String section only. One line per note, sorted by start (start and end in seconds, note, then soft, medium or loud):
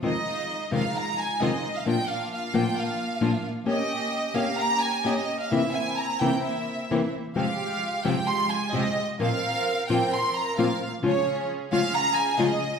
0.03 0.68 G#3 medium
0.03 0.69 D#4 medium
0.03 0.68 F4 medium
0.71 1.37 G#3 medium
0.71 1.37 D#4 medium
0.71 1.37 F4 medium
1.40 1.60 G#3 medium
1.40 1.60 D#4 medium
1.40 1.60 F4 medium
1.86 2.51 A#3 medium
1.86 2.51 D4 medium
1.86 2.51 F4 medium
2.54 3.19 A#3 medium
2.54 3.19 D4 medium
2.54 3.19 F4 medium
3.22 3.41 A#3 medium
3.22 3.41 D4 medium
3.22 3.42 F4 medium
3.67 4.33 A#3 medium
3.67 4.33 C#4 medium
3.67 4.33 G4 medium
4.36 5.01 A#3 medium
4.36 5.01 C#4 medium
4.36 5.02 G4 medium
5.04 5.24 A#3 medium
5.04 5.24 C#4 medium
5.04 5.24 G4 medium
5.51 6.16 A#3 medium
5.51 6.16 C4 medium
5.51 6.17 E4 medium
6.20 6.86 A#3 medium
6.20 6.86 C4 medium
6.20 6.86 E4 medium
6.90 7.09 A#3 medium
6.90 7.09 C4 medium
6.90 7.10 E4 medium
7.36 8.02 G#3 medium
7.36 8.02 F4 medium
7.36 8.02 G4 medium
8.05 8.70 G#3 medium
8.05 8.70 F4 medium
8.05 8.70 G4 medium
8.74 8.93 G#3 medium
8.74 8.93 F4 medium
8.74 8.94 G4 medium
9.20 9.85 C4 medium
9.20 9.85 F4 medium
9.20 9.85 A#4 medium
9.88 10.53 C4 medium
9.88 10.53 F4 medium
9.88 10.53 A#4 medium
10.57 10.76 C4 medium
10.57 10.76 F4 medium
10.57 10.76 A#4 medium
11.03 11.67 C#4 medium
11.03 11.67 F4 medium
11.03 11.67 G#4 medium
11.71 12.36 C#4 medium
11.71 12.36 F4 medium
11.71 12.36 G#4 medium
12.39 12.58 C#4 medium
12.39 12.58 F4 medium
12.39 12.58 G#4 medium